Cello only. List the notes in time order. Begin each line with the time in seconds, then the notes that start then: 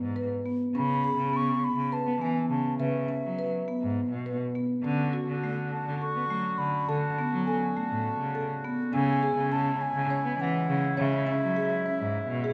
0.02 G#2
0.75 C#3
1.18 C#3
1.77 C#3
2.06 B3
2.21 E3
2.50 C#3
2.79 C#3
3.23 F#3
3.82 G#2
4.11 B2
4.84 D3
5.28 D3
5.86 D3
6.15 B3
6.29 F#3
6.59 D3
6.87 D3
7.32 F#3
7.91 A2
8.20 C#3
8.93 C#3
9.37 C#3
9.95 C#3
10.24 B3
10.39 E3
10.69 C#3
10.99 C#3
11.43 F#3
12.00 G#2
12.29 B2